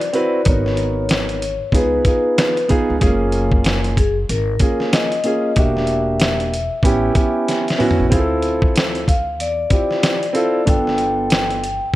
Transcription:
Already playing: vibraphone D5
0.01 closed hi-hat
0.13 grand piano C4 E4 F#4 B4, closed hi-hat
0.45 upright bass G#1, grand piano B3 D#4 F#4 A#4, vibraphone C#5, kick, closed hi-hat
0.66 snare
0.77 closed hi-hat
1.09 snare, closed hi-hat
1.29 closed hi-hat
1.42 closed hi-hat
1.72 upright bass C#2, grand piano B3 D#4 F4 G#4, vibraphone B4, kick, closed hi-hat
2.04 grand piano B3 D#4 F4 G#4, kick, closed hi-hat
2.38 snare, closed hi-hat
2.57 closed hi-hat
2.68 grand piano B3 D#4 F4 G#4, kick, closed hi-hat
2.90 upright bass C#2
3.00 upright bass F#1, grand piano G#3 C#4 F4 G#4, kick, closed hi-hat
3.06 grand piano A#3
3.32 closed hi-hat
3.52 kick
3.64 snare, closed hi-hat
3.84 closed hi-hat
3.97 vibraphone G#4, kick, closed hi-hat
4.29 upright bass G#1, vibraphone A#4, closed hi-hat
4.59 grand piano A#3 C#4 F4 G#4, kick, closed hi-hat
4.80 snare
4.93 vibraphone D#5, snare, closed hi-hat
5.12 closed hi-hat
5.24 grand piano A#3 C#4 F4 G#4, closed hi-hat
5.56 upright bass E1, grand piano A#3 D4 F#4 G4, vibraphone E5, kick, closed hi-hat
5.77 snare
5.87 closed hi-hat
6.20 snare, closed hi-hat
6.40 closed hi-hat
6.54 closed hi-hat
6.83 upright bass A1, grand piano B3 C#4 E4 G4, kick, closed hi-hat
7.14 grand piano B3 C#4 E4 G4, kick, closed hi-hat
7.48 snare, closed hi-hat
7.68 snare, closed hi-hat
7.78 grand piano B3 C#4 E4 F#4, mid tom, open hi-hat
7.91 floor tom
8.00 upright bass A1
8.10 upright bass D2, grand piano C4 E4 F4 G#4, kick, closed hi-hat
8.19 grand piano A4
8.42 closed hi-hat
8.62 kick
8.76 snare, closed hi-hat
8.95 closed hi-hat
9.08 vibraphone F5, kick, closed hi-hat
9.40 upright bass E2, vibraphone D5, closed hi-hat
9.70 grand piano C4 E4 F4 G4, kick, closed hi-hat
9.91 snare
10.03 snare, closed hi-hat
10.23 closed hi-hat
10.33 grand piano C4 E4 F4 A4, closed hi-hat
10.65 upright bass G1, grand piano B3 D4 F4 A4, kick, closed hi-hat
10.69 vibraphone G5
10.87 snare
10.98 closed hi-hat
11.30 snare, closed hi-hat
11.50 closed hi-hat
11.64 closed hi-hat

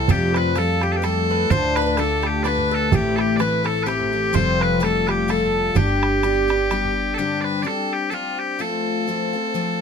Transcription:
Already playing: bagpipes A4, clarinet A4
0.08 upright bass F2, twelve-string acoustic guitar F2 C3 F3 G3 A3 F4, bouzouki G4, clarinet G4, bagpipes G4, bodhran
0.34 clarinet B4, bouzouki B4, bagpipes B4, bodhran
0.55 twelve-string acoustic guitar F3 G3 A3 F4, bouzouki A4, clarinet A4, bagpipes A4, bodhran
0.81 clarinet G4, bagpipes G4, bouzouki G4, bodhran
0.92 bagpipes A4
0.96 bagpipes G4, clarinet B4
1.02 twelve-string acoustic guitar F3 G3 A3 F4, bagpipes A4, clarinet A4, bouzouki A4, bodhran
1.30 bouzouki B4
1.50 upright bass D2, twelve-string acoustic guitar D2 A2 D3 A3 D4 F4, bagpipes C5, bouzouki C5, clarinet C5, bodhran
1.76 clarinet B4, bagpipes B4, bouzouki B4, bodhran
1.82 bouzouki B4
1.86 bouzouki B4
1.97 twelve-string acoustic guitar D3 A3 D4 F4, clarinet A4, bouzouki A4, bagpipes A4, bodhran
2.22 bouzouki G4, bodhran
2.26 bagpipes G4
2.43 twelve-string acoustic guitar D3 A3 D4 F4, bouzouki B4, clarinet B4, bagpipes D5, bodhran
2.47 bagpipes B4
2.58 bodhran
2.71 bouzouki A4, bagpipes A4
2.91 upright bass A1, twelve-string acoustic guitar A2 E3 A3 C4 E4, clarinet G4, bouzouki G4, bagpipes G4, bodhran
3.16 clarinet G4, bagpipes A4, bodhran
3.20 bagpipes G4
3.36 twelve-string acoustic guitar E3, bouzouki B4, bagpipes D5, bodhran
3.40 twelve-string acoustic guitar A3 C4 E4, bagpipes B4, clarinet B4
3.64 bouzouki A4, bagpipes A4, clarinet A4, bodhran
3.83 twelve-string acoustic guitar E3 C4, bouzouki G4, bagpipes G4 B4
3.87 twelve-string acoustic guitar A3 E4, clarinet G4, bodhran
4.01 bodhran
4.13 twelve-string acoustic guitar A3 C4 E4
4.33 upright bass F1, twelve-string acoustic guitar F2 C3 F3 G3 A3 F4, bouzouki C5, clarinet C5, bagpipes C5, bodhran
4.60 clarinet B4, bagpipes B4, bodhran
4.80 twelve-string acoustic guitar F3 G3 A3 F4, bouzouki A4, clarinet A4, bodhran
4.84 bagpipes A4
5.07 bouzouki G4, clarinet G4, bagpipes G4 B4, bodhran
5.28 twelve-string acoustic guitar F3 G3 A3 F4, bouzouki A4, bagpipes A4, clarinet A4, bodhran
5.43 bodhran
5.72 upright bass G1, twelve-string acoustic guitar G3, bouzouki G4, clarinet A4
5.76 twelve-string acoustic guitar B3 D4 G4, bagpipes G4, clarinet G4, bodhran
6.03 bodhran
6.23 twelve-string acoustic guitar G3 B3 D4 G4, bodhran
6.48 twelve-string acoustic guitar B3 D4 G4, bodhran
6.71 twelve-string acoustic guitar G3 B3 D4 G4, bodhran
6.85 bodhran
7.14 bagpipes G4 A4
7.18 twelve-string acoustic guitar G2 D3 G3 C4 D4 G4
7.41 bagpipes B4 D5
7.63 twelve-string acoustic guitar G3 C4 D4 G4, bagpipes D5
7.67 bagpipes A4
7.93 bagpipes G4
8.10 twelve-string acoustic guitar G3 C4 D4 G4, bagpipes F4 A4
8.39 bagpipes G4
8.59 twelve-string acoustic guitar F3 A3 C4 F4, bagpipes A4
9.07 twelve-string acoustic guitar F3 A3 C4 F4
9.33 twelve-string acoustic guitar A3 C4 F4
9.54 twelve-string acoustic guitar F3 A3 C4 F4

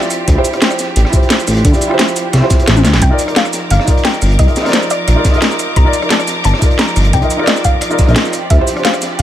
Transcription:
Already playing: string section F3 C4 G4, felt piano E4 F4 G4 D5
0.02 snare, shaker
0.10 string section D4, cross-stick, closed hi-hat, shaker
0.28 analog synth bass D2, kick, closed hi-hat
0.35 felt piano E4 F4 G4 C5
0.44 closed hi-hat, shaker
0.50 felt piano E4 F4, cross-stick, closed hi-hat
0.55 felt piano G4 C5
0.62 snare, closed hi-hat
0.71 cross-stick, shaker
0.79 snare, closed hi-hat, shaker
0.96 analog synth bass A1, closed hi-hat
1.05 cross-stick, snare
1.10 felt piano E4 F4, kick, closed hi-hat, shaker
1.14 felt piano G4 C5
1.23 closed hi-hat
1.30 snare, closed hi-hat
1.39 shaker
1.48 analog synth bass A1, cross-stick, closed hi-hat, open hi-hat, shaker
1.57 closed hi-hat
1.65 analog synth bass D2, kick, closed hi-hat
1.72 felt piano E4 F4 G4 D5, closed hi-hat, shaker
1.81 closed hi-hat, shaker
1.87 felt piano E4 F4, cross-stick
1.92 felt piano G4 C5
1.99 snare, closed hi-hat
2.08 shaker
2.16 closed hi-hat, shaker
2.33 analog synth bass C2, cross-stick, snare, closed hi-hat
2.40 felt piano E4 F4 G4 C5
2.50 kick, snare, closed hi-hat, shaker
2.56 felt piano E4 F4, closed hi-hat
2.60 felt piano G4 C5
2.67 analog synth bass A1, snare, closed hi-hat
2.76 snare, high tom, shaker
2.85 analog synth bass D2, cross-stick, snare, closed hi-hat, shaker
2.94 analog synth bass A1, snare
3.02 analog synth bass C2, string section F3 D#4 A#4 D6, synth pluck G5, kick, closed hi-hat
3.09 felt piano D#4 F4 A#4 D5
3.19 closed hi-hat, shaker
3.25 felt piano D#4 F4, cross-stick, closed hi-hat
3.29 felt piano A#4 D5
3.36 synth pluck F5, snare, closed hi-hat
3.45 cross-stick, shaker
3.53 snare, closed hi-hat, shaker
3.70 analog synth bass G1, synth pluck F5, closed hi-hat
3.79 cross-stick, snare
3.84 felt piano D#4 F4, kick, closed hi-hat, shaker
3.89 felt piano A#4 D5
3.97 closed hi-hat
4.04 synth pluck G5, snare, closed hi-hat
4.14 shaker
4.22 analog synth bass G1, cross-stick, closed hi-hat, open hi-hat, shaker
4.32 closed hi-hat
4.39 analog synth bass C2, synth pluck D#5, kick, closed hi-hat
4.46 felt piano D#4 F4 A#4 D#5, closed hi-hat
4.56 snare, closed hi-hat, shaker
4.62 felt piano D#4 F4, cross-stick
4.66 felt piano A#4 D5, snare, closed hi-hat
4.69 snare, closed hi-hat
4.73 synth pluck C5, snare, closed hi-hat
4.82 shaker
4.90 synth pluck D5, closed hi-hat, shaker
5.08 analog synth bass A#1, cross-stick, closed hi-hat
5.15 felt piano D#4 F4 A#4 D5
5.24 kick, snare, closed hi-hat, shaker
5.30 felt piano D#4 F4, closed hi-hat
5.35 felt piano A#4 D#5
5.42 snare, closed hi-hat
5.51 snare, shaker
5.59 cross-stick, closed hi-hat, shaker
5.76 analog synth bass C2, synth pluck A#5, kick, closed hi-hat
5.84 felt piano D#4 F4 A#4 D5
5.93 closed hi-hat, shaker
5.99 felt piano D#4 F4, cross-stick, closed hi-hat
6.03 felt piano A#4 D5
6.10 synth pluck A5, snare, closed hi-hat
6.20 cross-stick, shaker
6.28 snare, closed hi-hat, shaker
6.44 analog synth bass G1, synth pluck A5, closed hi-hat
6.54 cross-stick, snare
6.59 felt piano D#4 F4, kick, closed hi-hat, shaker
6.63 felt piano A#4 D5, closed hi-hat
6.71 closed hi-hat
6.79 synth pluck A#5, snare, closed hi-hat
6.88 shaker
6.96 analog synth bass G1, cross-stick, closed hi-hat, open hi-hat, shaker
7.05 closed hi-hat
7.13 analog synth bass C2, synth pluck G5, kick, closed hi-hat
7.21 felt piano D#4 F4 A#4 D#5, closed hi-hat
7.30 closed hi-hat, shaker
7.36 felt piano D#4 F4, cross-stick
7.41 felt piano A#4 D5
7.47 synth pluck D#5, snare, closed hi-hat
7.56 shaker
7.65 synth pluck F5, kick, closed hi-hat, shaker
7.81 cross-stick, closed hi-hat
7.89 felt piano D#4 F4 A#4 D5, shaker
7.98 kick, snare, closed hi-hat, shaker
8.06 analog synth bass A#1, felt piano D#4 F4 A#4 D#5, closed hi-hat
8.16 snare, closed hi-hat
8.25 snare, shaker
8.33 string section C4 G4 D5, cross-stick, closed hi-hat, shaker
8.50 analog synth bass D2, synth pluck E5, kick, closed hi-hat
8.58 felt piano E4 F4 G4 C5
8.67 closed hi-hat, shaker
8.73 felt piano D4 F4, cross-stick, closed hi-hat
8.78 felt piano G4 C5
8.85 synth pluck F5, snare, closed hi-hat
8.94 cross-stick, shaker
9.02 snare, closed hi-hat, shaker
9.19 synth pluck F5, closed hi-hat

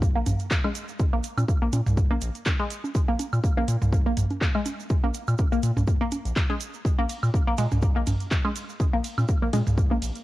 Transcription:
Already playing: analog synth bass C2
0.02 kick, shaker
0.16 analog synth bass A#1, synth arpeggio sound A#3
0.26 analog synth bass A#1, closed hi-hat, mid tom, low bongo, shaker
0.39 closed hi-hat, shaker
0.51 kick, clap, shaker
0.64 synth arpeggio sound G#3, low bongo, high woodblock
0.75 closed hi-hat, shaker
0.88 shaker
1.00 kick, low bongo, shaker
1.13 analog synth bass A#1, synth arpeggio sound A#3
1.24 closed hi-hat, shaker
1.37 analog synth bass A#2, low bongo, high woodblock, shaker
1.48 kick, shaker
1.62 analog synth bass A#1, synth arpeggio sound A#3
1.73 analog synth bass A#2, closed hi-hat, low bongo, shaker
1.86 analog synth bass C2, mid tom, shaker
1.97 kick, shaker
2.11 analog synth bass A#1, synth arpeggio sound A#3, low bongo
2.21 analog synth bass A#1, closed hi-hat, shaker
2.35 closed hi-hat, shaker
2.46 kick, clap, low bongo, shaker
2.60 synth arpeggio sound G#3
2.70 closed hi-hat, shaker
2.84 low bongo, shaker
2.95 kick, shaker
3.08 analog synth bass A#1, synth arpeggio sound A#3
3.19 closed hi-hat, low bongo, shaker
3.33 analog synth bass A#2, high woodblock, shaker
3.44 kick, shaker
3.57 analog synth bass A#1, synth arpeggio sound A#3, low bongo
3.68 analog synth bass A#2, closed hi-hat, shaker
3.82 analog synth bass C2, mid tom, shaker
3.92 kick, low bongo, shaker
4.06 analog synth bass A#1, synth arpeggio sound A#3
4.17 analog synth bass A#1, closed hi-hat, mid tom, shaker
4.30 closed hi-hat, low bongo, shaker
4.41 kick, clap, shaker
4.55 synth arpeggio sound G#3, high woodblock
4.66 closed hi-hat, low bongo, shaker
4.80 shaker
4.90 kick, shaker
5.03 analog synth bass A#1, synth arpeggio sound A#3, low bongo
5.14 closed hi-hat, shaker
5.28 analog synth bass A#2, high woodblock, shaker
5.38 kick, low bongo, shaker
5.52 analog synth bass A#1, synth arpeggio sound A#3, shaker
5.63 analog synth bass A#2, closed hi-hat, shaker
5.77 analog synth bass C2, mid tom, low bongo, shaker
5.87 kick, shaker
6.01 synth arpeggio sound A#3
6.12 closed hi-hat, low bongo, shaker
6.25 analog synth bass A#1, closed hi-hat, shaker
6.36 kick, clap, shaker
6.50 synth arpeggio sound G#3, low bongo
6.61 closed hi-hat, shaker
6.74 shaker
6.85 kick, shaker
6.99 analog synth bass A#1, synth arpeggio sound A#3, low bongo
7.09 closed hi-hat, ride, shaker
7.23 analog synth bass A#2, high woodblock, shaker
7.34 kick, low bongo, shaker
7.47 analog synth bass A#1, synth arpeggio sound A#3
7.58 analog synth bass A#2, synth arpeggio sound G#3, closed hi-hat, ride, shaker
7.71 analog synth bass C2, mid tom, low bongo, shaker
7.82 kick, shaker
7.96 analog synth bass A#1, synth arpeggio sound A#3
8.07 analog synth bass A#1, closed hi-hat, mid tom, ride, low bongo, shaker
8.20 closed hi-hat, shaker
8.31 kick, clap, shaker
8.45 synth arpeggio sound G#3, low bongo, high woodblock
8.56 closed hi-hat, ride, shaker
8.70 shaker
8.80 kick, low bongo, shaker
8.94 analog synth bass A#1, synth arpeggio sound A#3
9.04 closed hi-hat, ride, shaker
9.18 analog synth bass A#2, low bongo, high woodblock, shaker
9.29 kick, shaker
9.42 analog synth bass A#1, synth arpeggio sound A#3
9.53 analog synth bass A#2, synth arpeggio sound G#3, closed hi-hat, ride, low bongo, shaker
9.67 analog synth bass C2, mid tom, shaker
9.78 kick, shaker
9.91 analog synth bass A#1, synth arpeggio sound A#3, low bongo
10.02 analog synth bass A#1, closed hi-hat, ride, shaker
10.15 closed hi-hat, shaker

